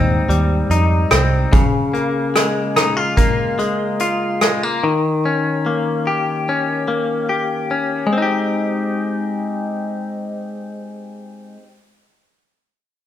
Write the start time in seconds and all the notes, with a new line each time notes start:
Already playing: D#2 G#2 G3 C4 D#4
0.29 D#2 G3, closed hi-hat
0.70 F2 D#4, closed hi-hat
1.10 C2 C4, cross-stick, closed hi-hat
1.53 C#3, kick, closed hi-hat
1.94 A#3, closed hi-hat
2.35 G#3, cross-stick, closed hi-hat
2.76 D#4, cross-stick, closed hi-hat
2.97 F4
3.17 A#3, kick, closed hi-hat
3.59 G#3, closed hi-hat
3.99 F4, closed hi-hat
4.41 G#3, cross-stick, closed hi-hat
4.63 A#3
4.84 D#3
5.25 C#4
5.66 A#3
6.07 G4
6.49 C#4
6.88 A#3
7.29 G4
7.71 C#4
8.07 G#3
8.13 C4
8.18 D#4
8.22 G4